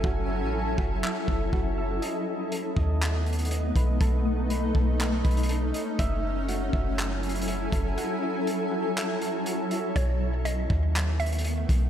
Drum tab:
HH |--------------------------------|x-------x-------x---xxxxx---x---|x-------x-------x---xxxxx---x---|x-------x-------x---xxxxx---x---|
CP |----------------x---------------|----------------x---------------|----------------x---------------|----------------x---------------|
BD |o-----------o-------o---o-------|------------o---------------o---|o-----------o-------o-----------|o-----------o---------------o---|

HH |x-------x-------x---x---x---x---|x-------x-------x---xxxxx---x---|
CP |----------------x---------------|----------------x---------------|
BD |--------------------------------|o-----------o---------------o---|